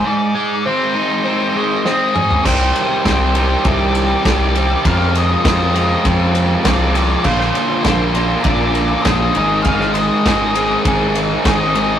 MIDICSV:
0, 0, Header, 1, 7, 480
1, 0, Start_track
1, 0, Key_signature, -3, "minor"
1, 0, Tempo, 600601
1, 36, Time_signature, 4, 2, 24, 8
1, 9585, End_track
2, 0, Start_track
2, 0, Title_t, "Synth bell"
2, 0, Program_c, 0, 98
2, 1478, Note_on_c, 0, 84, 73
2, 1927, Note_off_c, 0, 84, 0
2, 1964, Note_on_c, 0, 79, 73
2, 2410, Note_off_c, 0, 79, 0
2, 2440, Note_on_c, 0, 79, 73
2, 2888, Note_off_c, 0, 79, 0
2, 2923, Note_on_c, 0, 79, 85
2, 3369, Note_off_c, 0, 79, 0
2, 3401, Note_on_c, 0, 79, 84
2, 3848, Note_off_c, 0, 79, 0
2, 3885, Note_on_c, 0, 84, 98
2, 4106, Note_off_c, 0, 84, 0
2, 4126, Note_on_c, 0, 84, 78
2, 4810, Note_off_c, 0, 84, 0
2, 5301, Note_on_c, 0, 80, 81
2, 5757, Note_off_c, 0, 80, 0
2, 5784, Note_on_c, 0, 77, 77
2, 6238, Note_off_c, 0, 77, 0
2, 6248, Note_on_c, 0, 77, 67
2, 6710, Note_off_c, 0, 77, 0
2, 6718, Note_on_c, 0, 82, 88
2, 7184, Note_off_c, 0, 82, 0
2, 7203, Note_on_c, 0, 84, 84
2, 7667, Note_off_c, 0, 84, 0
2, 7690, Note_on_c, 0, 84, 94
2, 7924, Note_off_c, 0, 84, 0
2, 7942, Note_on_c, 0, 84, 85
2, 8635, Note_off_c, 0, 84, 0
2, 9155, Note_on_c, 0, 84, 75
2, 9585, Note_off_c, 0, 84, 0
2, 9585, End_track
3, 0, Start_track
3, 0, Title_t, "Lead electric guitar"
3, 0, Program_c, 1, 29
3, 60, Note_on_c, 1, 74, 102
3, 536, Note_off_c, 1, 74, 0
3, 539, Note_on_c, 1, 72, 73
3, 1458, Note_off_c, 1, 72, 0
3, 1483, Note_on_c, 1, 75, 91
3, 1954, Note_off_c, 1, 75, 0
3, 1957, Note_on_c, 1, 72, 100
3, 2430, Note_off_c, 1, 72, 0
3, 2440, Note_on_c, 1, 72, 72
3, 2888, Note_off_c, 1, 72, 0
3, 2921, Note_on_c, 1, 74, 88
3, 3394, Note_off_c, 1, 74, 0
3, 3404, Note_on_c, 1, 74, 104
3, 3886, Note_off_c, 1, 74, 0
3, 3889, Note_on_c, 1, 77, 113
3, 4108, Note_off_c, 1, 77, 0
3, 4139, Note_on_c, 1, 75, 97
3, 4817, Note_off_c, 1, 75, 0
3, 5315, Note_on_c, 1, 74, 96
3, 5792, Note_on_c, 1, 72, 103
3, 5810, Note_off_c, 1, 74, 0
3, 6242, Note_off_c, 1, 72, 0
3, 6267, Note_on_c, 1, 72, 81
3, 6719, Note_off_c, 1, 72, 0
3, 6739, Note_on_c, 1, 74, 97
3, 7195, Note_off_c, 1, 74, 0
3, 7214, Note_on_c, 1, 75, 99
3, 7672, Note_off_c, 1, 75, 0
3, 7694, Note_on_c, 1, 77, 111
3, 7926, Note_off_c, 1, 77, 0
3, 7933, Note_on_c, 1, 75, 82
3, 8631, Note_off_c, 1, 75, 0
3, 9158, Note_on_c, 1, 75, 84
3, 9585, Note_off_c, 1, 75, 0
3, 9585, End_track
4, 0, Start_track
4, 0, Title_t, "Overdriven electric guitar"
4, 0, Program_c, 2, 29
4, 40, Note_on_c, 2, 44, 68
4, 281, Note_on_c, 2, 56, 69
4, 525, Note_on_c, 2, 60, 75
4, 752, Note_on_c, 2, 63, 71
4, 987, Note_off_c, 2, 60, 0
4, 996, Note_on_c, 2, 60, 65
4, 1234, Note_off_c, 2, 56, 0
4, 1241, Note_off_c, 2, 44, 0
4, 1243, Note_on_c, 2, 56, 68
4, 1472, Note_off_c, 2, 60, 0
4, 1482, Note_on_c, 2, 60, 77
4, 1722, Note_on_c, 2, 68, 79
4, 1952, Note_on_c, 2, 48, 96
4, 1956, Note_off_c, 2, 63, 0
4, 1959, Note_off_c, 2, 56, 0
4, 1961, Note_off_c, 2, 60, 0
4, 1961, Note_off_c, 2, 68, 0
4, 1962, Note_on_c, 2, 51, 102
4, 1967, Note_on_c, 2, 55, 101
4, 1972, Note_on_c, 2, 60, 108
4, 1974, Note_on_c, 2, 67, 107
4, 2427, Note_off_c, 2, 48, 0
4, 2434, Note_off_c, 2, 51, 0
4, 2437, Note_on_c, 2, 48, 89
4, 2440, Note_off_c, 2, 55, 0
4, 2443, Note_on_c, 2, 51, 94
4, 2448, Note_off_c, 2, 67, 0
4, 2449, Note_on_c, 2, 55, 97
4, 2452, Note_off_c, 2, 60, 0
4, 2455, Note_on_c, 2, 60, 102
4, 2458, Note_on_c, 2, 67, 96
4, 2667, Note_off_c, 2, 48, 0
4, 2671, Note_off_c, 2, 51, 0
4, 2676, Note_off_c, 2, 55, 0
4, 2676, Note_on_c, 2, 48, 85
4, 2681, Note_on_c, 2, 51, 85
4, 2684, Note_off_c, 2, 67, 0
4, 2686, Note_on_c, 2, 55, 102
4, 2690, Note_off_c, 2, 60, 0
4, 2693, Note_on_c, 2, 60, 92
4, 2694, Note_on_c, 2, 67, 94
4, 2901, Note_off_c, 2, 48, 0
4, 2910, Note_off_c, 2, 51, 0
4, 2911, Note_off_c, 2, 55, 0
4, 2911, Note_on_c, 2, 48, 96
4, 2917, Note_off_c, 2, 60, 0
4, 2919, Note_off_c, 2, 67, 0
4, 2920, Note_on_c, 2, 51, 89
4, 2921, Note_on_c, 2, 55, 94
4, 2927, Note_on_c, 2, 60, 98
4, 2929, Note_on_c, 2, 67, 97
4, 3387, Note_off_c, 2, 48, 0
4, 3390, Note_off_c, 2, 51, 0
4, 3396, Note_off_c, 2, 55, 0
4, 3397, Note_on_c, 2, 48, 79
4, 3400, Note_on_c, 2, 51, 99
4, 3401, Note_off_c, 2, 60, 0
4, 3402, Note_off_c, 2, 67, 0
4, 3406, Note_on_c, 2, 55, 90
4, 3410, Note_on_c, 2, 60, 88
4, 3411, Note_on_c, 2, 67, 96
4, 3631, Note_off_c, 2, 51, 0
4, 3632, Note_off_c, 2, 48, 0
4, 3641, Note_on_c, 2, 51, 80
4, 3642, Note_off_c, 2, 55, 0
4, 3642, Note_on_c, 2, 48, 87
4, 3644, Note_off_c, 2, 67, 0
4, 3645, Note_off_c, 2, 60, 0
4, 3652, Note_on_c, 2, 55, 93
4, 3654, Note_on_c, 2, 60, 83
4, 3654, Note_on_c, 2, 67, 95
4, 3865, Note_off_c, 2, 51, 0
4, 3866, Note_off_c, 2, 48, 0
4, 3870, Note_on_c, 2, 41, 94
4, 3871, Note_off_c, 2, 55, 0
4, 3872, Note_off_c, 2, 60, 0
4, 3872, Note_off_c, 2, 67, 0
4, 3879, Note_on_c, 2, 48, 101
4, 3880, Note_on_c, 2, 53, 102
4, 3886, Note_on_c, 2, 56, 92
4, 3891, Note_on_c, 2, 60, 117
4, 3894, Note_on_c, 2, 65, 109
4, 4340, Note_off_c, 2, 41, 0
4, 4341, Note_off_c, 2, 48, 0
4, 4349, Note_off_c, 2, 56, 0
4, 4350, Note_on_c, 2, 41, 94
4, 4350, Note_on_c, 2, 48, 98
4, 4356, Note_off_c, 2, 53, 0
4, 4356, Note_off_c, 2, 60, 0
4, 4359, Note_on_c, 2, 53, 101
4, 4359, Note_on_c, 2, 56, 92
4, 4365, Note_on_c, 2, 60, 100
4, 4367, Note_off_c, 2, 65, 0
4, 4371, Note_on_c, 2, 65, 101
4, 4573, Note_off_c, 2, 41, 0
4, 4580, Note_off_c, 2, 48, 0
4, 4582, Note_on_c, 2, 41, 84
4, 4584, Note_off_c, 2, 53, 0
4, 4586, Note_off_c, 2, 56, 0
4, 4589, Note_off_c, 2, 60, 0
4, 4590, Note_on_c, 2, 48, 81
4, 4593, Note_on_c, 2, 53, 84
4, 4596, Note_off_c, 2, 65, 0
4, 4596, Note_on_c, 2, 56, 97
4, 4599, Note_on_c, 2, 60, 95
4, 4606, Note_on_c, 2, 65, 105
4, 4816, Note_off_c, 2, 41, 0
4, 4823, Note_off_c, 2, 48, 0
4, 4825, Note_on_c, 2, 41, 93
4, 4828, Note_off_c, 2, 53, 0
4, 4833, Note_on_c, 2, 48, 86
4, 4834, Note_off_c, 2, 56, 0
4, 4838, Note_off_c, 2, 60, 0
4, 4838, Note_on_c, 2, 53, 88
4, 4839, Note_off_c, 2, 65, 0
4, 4843, Note_on_c, 2, 56, 98
4, 4848, Note_on_c, 2, 60, 91
4, 4849, Note_on_c, 2, 65, 91
4, 5297, Note_off_c, 2, 41, 0
4, 5303, Note_off_c, 2, 48, 0
4, 5305, Note_off_c, 2, 53, 0
4, 5306, Note_on_c, 2, 41, 95
4, 5308, Note_off_c, 2, 56, 0
4, 5313, Note_off_c, 2, 60, 0
4, 5313, Note_on_c, 2, 48, 90
4, 5315, Note_on_c, 2, 53, 93
4, 5316, Note_off_c, 2, 65, 0
4, 5318, Note_on_c, 2, 56, 94
4, 5323, Note_on_c, 2, 60, 102
4, 5325, Note_on_c, 2, 65, 91
4, 5537, Note_off_c, 2, 41, 0
4, 5540, Note_off_c, 2, 48, 0
4, 5546, Note_off_c, 2, 53, 0
4, 5547, Note_on_c, 2, 41, 90
4, 5549, Note_on_c, 2, 48, 93
4, 5551, Note_off_c, 2, 56, 0
4, 5554, Note_off_c, 2, 60, 0
4, 5556, Note_on_c, 2, 53, 94
4, 5559, Note_off_c, 2, 65, 0
4, 5561, Note_on_c, 2, 56, 94
4, 5564, Note_on_c, 2, 60, 84
4, 5569, Note_on_c, 2, 65, 89
4, 5777, Note_off_c, 2, 41, 0
4, 5779, Note_off_c, 2, 48, 0
4, 5782, Note_off_c, 2, 53, 0
4, 5785, Note_off_c, 2, 56, 0
4, 5786, Note_off_c, 2, 60, 0
4, 5788, Note_on_c, 2, 46, 89
4, 5789, Note_off_c, 2, 65, 0
4, 5792, Note_on_c, 2, 50, 113
4, 5798, Note_on_c, 2, 58, 103
4, 5802, Note_on_c, 2, 62, 102
4, 5805, Note_on_c, 2, 65, 124
4, 6262, Note_off_c, 2, 46, 0
4, 6267, Note_off_c, 2, 50, 0
4, 6270, Note_off_c, 2, 58, 0
4, 6271, Note_on_c, 2, 46, 92
4, 6276, Note_off_c, 2, 65, 0
4, 6276, Note_on_c, 2, 50, 102
4, 6277, Note_off_c, 2, 62, 0
4, 6280, Note_on_c, 2, 58, 87
4, 6286, Note_on_c, 2, 65, 105
4, 6287, Note_on_c, 2, 62, 106
4, 6494, Note_off_c, 2, 46, 0
4, 6502, Note_off_c, 2, 50, 0
4, 6504, Note_on_c, 2, 46, 78
4, 6506, Note_off_c, 2, 62, 0
4, 6507, Note_off_c, 2, 58, 0
4, 6512, Note_on_c, 2, 50, 77
4, 6514, Note_off_c, 2, 65, 0
4, 6515, Note_on_c, 2, 62, 92
4, 6517, Note_on_c, 2, 58, 82
4, 6524, Note_on_c, 2, 65, 92
4, 6743, Note_off_c, 2, 46, 0
4, 6748, Note_off_c, 2, 50, 0
4, 6751, Note_off_c, 2, 58, 0
4, 6752, Note_on_c, 2, 46, 98
4, 6757, Note_off_c, 2, 62, 0
4, 6757, Note_on_c, 2, 50, 91
4, 6761, Note_on_c, 2, 58, 91
4, 6763, Note_off_c, 2, 65, 0
4, 6766, Note_on_c, 2, 62, 100
4, 6772, Note_on_c, 2, 65, 101
4, 7219, Note_off_c, 2, 46, 0
4, 7227, Note_off_c, 2, 50, 0
4, 7229, Note_on_c, 2, 46, 91
4, 7230, Note_off_c, 2, 58, 0
4, 7233, Note_off_c, 2, 62, 0
4, 7237, Note_on_c, 2, 50, 87
4, 7238, Note_off_c, 2, 65, 0
4, 7239, Note_on_c, 2, 58, 95
4, 7243, Note_on_c, 2, 62, 100
4, 7248, Note_on_c, 2, 65, 101
4, 7457, Note_off_c, 2, 46, 0
4, 7461, Note_off_c, 2, 50, 0
4, 7463, Note_off_c, 2, 58, 0
4, 7464, Note_off_c, 2, 62, 0
4, 7467, Note_off_c, 2, 65, 0
4, 7467, Note_on_c, 2, 44, 89
4, 7475, Note_on_c, 2, 51, 105
4, 7476, Note_on_c, 2, 56, 99
4, 7482, Note_on_c, 2, 60, 92
4, 7485, Note_on_c, 2, 63, 113
4, 7490, Note_on_c, 2, 68, 108
4, 7697, Note_off_c, 2, 44, 0
4, 7704, Note_off_c, 2, 51, 0
4, 7706, Note_on_c, 2, 44, 101
4, 7713, Note_off_c, 2, 56, 0
4, 7714, Note_on_c, 2, 51, 90
4, 7717, Note_off_c, 2, 60, 0
4, 7719, Note_off_c, 2, 68, 0
4, 7720, Note_on_c, 2, 60, 107
4, 7722, Note_on_c, 2, 56, 106
4, 7728, Note_off_c, 2, 63, 0
4, 7728, Note_on_c, 2, 68, 107
4, 7731, Note_on_c, 2, 63, 106
4, 8184, Note_off_c, 2, 44, 0
4, 8188, Note_off_c, 2, 51, 0
4, 8194, Note_off_c, 2, 56, 0
4, 8194, Note_on_c, 2, 44, 91
4, 8198, Note_on_c, 2, 51, 89
4, 8203, Note_off_c, 2, 60, 0
4, 8203, Note_on_c, 2, 56, 102
4, 8204, Note_off_c, 2, 68, 0
4, 8206, Note_off_c, 2, 63, 0
4, 8207, Note_on_c, 2, 60, 90
4, 8209, Note_on_c, 2, 63, 99
4, 8213, Note_on_c, 2, 68, 98
4, 8418, Note_off_c, 2, 44, 0
4, 8422, Note_off_c, 2, 51, 0
4, 8426, Note_off_c, 2, 56, 0
4, 8428, Note_on_c, 2, 44, 82
4, 8432, Note_on_c, 2, 51, 80
4, 8436, Note_off_c, 2, 60, 0
4, 8436, Note_on_c, 2, 56, 90
4, 8439, Note_off_c, 2, 68, 0
4, 8440, Note_on_c, 2, 60, 102
4, 8441, Note_off_c, 2, 63, 0
4, 8444, Note_on_c, 2, 63, 93
4, 8449, Note_on_c, 2, 68, 93
4, 8658, Note_off_c, 2, 44, 0
4, 8662, Note_off_c, 2, 51, 0
4, 8667, Note_off_c, 2, 56, 0
4, 8668, Note_on_c, 2, 44, 91
4, 8671, Note_on_c, 2, 51, 97
4, 8673, Note_off_c, 2, 63, 0
4, 8677, Note_on_c, 2, 56, 97
4, 8681, Note_off_c, 2, 60, 0
4, 8682, Note_on_c, 2, 63, 97
4, 8683, Note_off_c, 2, 68, 0
4, 8684, Note_on_c, 2, 60, 92
4, 8692, Note_on_c, 2, 68, 109
4, 9135, Note_off_c, 2, 44, 0
4, 9143, Note_off_c, 2, 51, 0
4, 9145, Note_on_c, 2, 44, 90
4, 9148, Note_off_c, 2, 56, 0
4, 9153, Note_on_c, 2, 51, 93
4, 9155, Note_off_c, 2, 60, 0
4, 9155, Note_off_c, 2, 63, 0
4, 9158, Note_on_c, 2, 56, 97
4, 9158, Note_on_c, 2, 60, 102
4, 9159, Note_off_c, 2, 68, 0
4, 9165, Note_on_c, 2, 63, 93
4, 9168, Note_on_c, 2, 68, 110
4, 9374, Note_off_c, 2, 44, 0
4, 9378, Note_off_c, 2, 51, 0
4, 9381, Note_off_c, 2, 56, 0
4, 9384, Note_on_c, 2, 44, 80
4, 9387, Note_on_c, 2, 51, 86
4, 9391, Note_on_c, 2, 56, 75
4, 9393, Note_off_c, 2, 63, 0
4, 9393, Note_off_c, 2, 68, 0
4, 9398, Note_off_c, 2, 60, 0
4, 9401, Note_on_c, 2, 60, 94
4, 9402, Note_on_c, 2, 63, 91
4, 9403, Note_on_c, 2, 68, 92
4, 9585, Note_off_c, 2, 44, 0
4, 9585, Note_off_c, 2, 51, 0
4, 9585, Note_off_c, 2, 56, 0
4, 9585, Note_off_c, 2, 60, 0
4, 9585, Note_off_c, 2, 63, 0
4, 9585, Note_off_c, 2, 68, 0
4, 9585, End_track
5, 0, Start_track
5, 0, Title_t, "Analog synth pad"
5, 0, Program_c, 3, 89
5, 1959, Note_on_c, 3, 55, 73
5, 1967, Note_on_c, 3, 62, 99
5, 1969, Note_on_c, 3, 51, 75
5, 1973, Note_on_c, 3, 48, 85
5, 3860, Note_off_c, 3, 55, 0
5, 3864, Note_off_c, 3, 62, 0
5, 3865, Note_off_c, 3, 51, 0
5, 3879, Note_on_c, 3, 65, 100
5, 3880, Note_on_c, 3, 53, 82
5, 3886, Note_on_c, 3, 56, 79
5, 5772, Note_off_c, 3, 48, 0
5, 5778, Note_off_c, 3, 53, 0
5, 5782, Note_off_c, 3, 56, 0
5, 5802, Note_on_c, 3, 53, 79
5, 5807, Note_on_c, 3, 58, 75
5, 5808, Note_on_c, 3, 50, 89
5, 7443, Note_off_c, 3, 65, 0
5, 7461, Note_off_c, 3, 53, 0
5, 7463, Note_off_c, 3, 50, 0
5, 7463, Note_off_c, 3, 58, 0
5, 7484, Note_on_c, 3, 63, 96
5, 7487, Note_on_c, 3, 51, 69
5, 7488, Note_on_c, 3, 48, 85
5, 7494, Note_on_c, 3, 56, 72
5, 9585, Note_off_c, 3, 48, 0
5, 9585, Note_off_c, 3, 51, 0
5, 9585, Note_off_c, 3, 56, 0
5, 9585, Note_off_c, 3, 63, 0
5, 9585, End_track
6, 0, Start_track
6, 0, Title_t, "Picked electric bass"
6, 0, Program_c, 4, 34
6, 1962, Note_on_c, 4, 36, 84
6, 2154, Note_off_c, 4, 36, 0
6, 2444, Note_on_c, 4, 36, 97
6, 2827, Note_off_c, 4, 36, 0
6, 2917, Note_on_c, 4, 36, 112
6, 3303, Note_off_c, 4, 36, 0
6, 3399, Note_on_c, 4, 36, 96
6, 3784, Note_off_c, 4, 36, 0
6, 3877, Note_on_c, 4, 41, 92
6, 4262, Note_off_c, 4, 41, 0
6, 4355, Note_on_c, 4, 41, 103
6, 4741, Note_off_c, 4, 41, 0
6, 4837, Note_on_c, 4, 41, 112
6, 5222, Note_off_c, 4, 41, 0
6, 5316, Note_on_c, 4, 36, 102
6, 5701, Note_off_c, 4, 36, 0
6, 5793, Note_on_c, 4, 34, 92
6, 5987, Note_off_c, 4, 34, 0
6, 6274, Note_on_c, 4, 34, 108
6, 6659, Note_off_c, 4, 34, 0
6, 6751, Note_on_c, 4, 34, 101
6, 7137, Note_off_c, 4, 34, 0
6, 7236, Note_on_c, 4, 34, 106
6, 7428, Note_off_c, 4, 34, 0
6, 7483, Note_on_c, 4, 32, 95
6, 8056, Note_off_c, 4, 32, 0
6, 8198, Note_on_c, 4, 32, 103
6, 8581, Note_off_c, 4, 32, 0
6, 8673, Note_on_c, 4, 32, 97
6, 9058, Note_off_c, 4, 32, 0
6, 9156, Note_on_c, 4, 32, 92
6, 9539, Note_off_c, 4, 32, 0
6, 9585, End_track
7, 0, Start_track
7, 0, Title_t, "Drums"
7, 1483, Note_on_c, 9, 38, 59
7, 1563, Note_off_c, 9, 38, 0
7, 1723, Note_on_c, 9, 45, 80
7, 1803, Note_off_c, 9, 45, 0
7, 1843, Note_on_c, 9, 43, 79
7, 1923, Note_off_c, 9, 43, 0
7, 1962, Note_on_c, 9, 36, 110
7, 1963, Note_on_c, 9, 49, 119
7, 2042, Note_off_c, 9, 36, 0
7, 2043, Note_off_c, 9, 49, 0
7, 2203, Note_on_c, 9, 51, 68
7, 2282, Note_off_c, 9, 51, 0
7, 2441, Note_on_c, 9, 36, 104
7, 2442, Note_on_c, 9, 51, 91
7, 2445, Note_on_c, 9, 38, 97
7, 2521, Note_off_c, 9, 36, 0
7, 2522, Note_off_c, 9, 51, 0
7, 2525, Note_off_c, 9, 38, 0
7, 2677, Note_on_c, 9, 51, 72
7, 2757, Note_off_c, 9, 51, 0
7, 2915, Note_on_c, 9, 51, 89
7, 2919, Note_on_c, 9, 36, 95
7, 2995, Note_off_c, 9, 51, 0
7, 2999, Note_off_c, 9, 36, 0
7, 3157, Note_on_c, 9, 51, 67
7, 3236, Note_off_c, 9, 51, 0
7, 3400, Note_on_c, 9, 36, 116
7, 3402, Note_on_c, 9, 51, 91
7, 3404, Note_on_c, 9, 38, 112
7, 3480, Note_off_c, 9, 36, 0
7, 3482, Note_off_c, 9, 51, 0
7, 3484, Note_off_c, 9, 38, 0
7, 3640, Note_on_c, 9, 51, 68
7, 3720, Note_off_c, 9, 51, 0
7, 3877, Note_on_c, 9, 36, 119
7, 3878, Note_on_c, 9, 51, 105
7, 3957, Note_off_c, 9, 36, 0
7, 3958, Note_off_c, 9, 51, 0
7, 4119, Note_on_c, 9, 51, 65
7, 4198, Note_off_c, 9, 51, 0
7, 4356, Note_on_c, 9, 36, 115
7, 4357, Note_on_c, 9, 51, 108
7, 4359, Note_on_c, 9, 38, 113
7, 4436, Note_off_c, 9, 36, 0
7, 4436, Note_off_c, 9, 51, 0
7, 4439, Note_off_c, 9, 38, 0
7, 4600, Note_on_c, 9, 51, 75
7, 4680, Note_off_c, 9, 51, 0
7, 4835, Note_on_c, 9, 51, 108
7, 4836, Note_on_c, 9, 36, 104
7, 4915, Note_off_c, 9, 51, 0
7, 4916, Note_off_c, 9, 36, 0
7, 5074, Note_on_c, 9, 51, 76
7, 5154, Note_off_c, 9, 51, 0
7, 5314, Note_on_c, 9, 51, 114
7, 5316, Note_on_c, 9, 36, 116
7, 5317, Note_on_c, 9, 38, 122
7, 5394, Note_off_c, 9, 51, 0
7, 5396, Note_off_c, 9, 36, 0
7, 5396, Note_off_c, 9, 38, 0
7, 5557, Note_on_c, 9, 51, 83
7, 5637, Note_off_c, 9, 51, 0
7, 5788, Note_on_c, 9, 49, 89
7, 5795, Note_on_c, 9, 36, 93
7, 5868, Note_off_c, 9, 49, 0
7, 5875, Note_off_c, 9, 36, 0
7, 5915, Note_on_c, 9, 38, 34
7, 5995, Note_off_c, 9, 38, 0
7, 6035, Note_on_c, 9, 51, 67
7, 6115, Note_off_c, 9, 51, 0
7, 6270, Note_on_c, 9, 51, 84
7, 6272, Note_on_c, 9, 38, 112
7, 6274, Note_on_c, 9, 36, 116
7, 6350, Note_off_c, 9, 51, 0
7, 6352, Note_off_c, 9, 38, 0
7, 6354, Note_off_c, 9, 36, 0
7, 6512, Note_on_c, 9, 51, 74
7, 6592, Note_off_c, 9, 51, 0
7, 6744, Note_on_c, 9, 51, 87
7, 6754, Note_on_c, 9, 36, 112
7, 6824, Note_off_c, 9, 51, 0
7, 6834, Note_off_c, 9, 36, 0
7, 6992, Note_on_c, 9, 51, 67
7, 7072, Note_off_c, 9, 51, 0
7, 7232, Note_on_c, 9, 51, 92
7, 7234, Note_on_c, 9, 38, 107
7, 7236, Note_on_c, 9, 36, 127
7, 7311, Note_off_c, 9, 51, 0
7, 7314, Note_off_c, 9, 38, 0
7, 7316, Note_off_c, 9, 36, 0
7, 7471, Note_on_c, 9, 51, 66
7, 7550, Note_off_c, 9, 51, 0
7, 7709, Note_on_c, 9, 51, 88
7, 7717, Note_on_c, 9, 36, 104
7, 7789, Note_off_c, 9, 51, 0
7, 7796, Note_off_c, 9, 36, 0
7, 7837, Note_on_c, 9, 38, 30
7, 7917, Note_off_c, 9, 38, 0
7, 7952, Note_on_c, 9, 51, 72
7, 8032, Note_off_c, 9, 51, 0
7, 8197, Note_on_c, 9, 36, 105
7, 8198, Note_on_c, 9, 51, 95
7, 8200, Note_on_c, 9, 38, 119
7, 8277, Note_off_c, 9, 36, 0
7, 8278, Note_off_c, 9, 51, 0
7, 8280, Note_off_c, 9, 38, 0
7, 8435, Note_on_c, 9, 51, 81
7, 8515, Note_off_c, 9, 51, 0
7, 8673, Note_on_c, 9, 51, 99
7, 8675, Note_on_c, 9, 36, 114
7, 8753, Note_off_c, 9, 51, 0
7, 8755, Note_off_c, 9, 36, 0
7, 8914, Note_on_c, 9, 51, 80
7, 8994, Note_off_c, 9, 51, 0
7, 9153, Note_on_c, 9, 36, 120
7, 9154, Note_on_c, 9, 51, 119
7, 9156, Note_on_c, 9, 38, 118
7, 9233, Note_off_c, 9, 36, 0
7, 9234, Note_off_c, 9, 51, 0
7, 9236, Note_off_c, 9, 38, 0
7, 9394, Note_on_c, 9, 51, 71
7, 9474, Note_off_c, 9, 51, 0
7, 9585, End_track
0, 0, End_of_file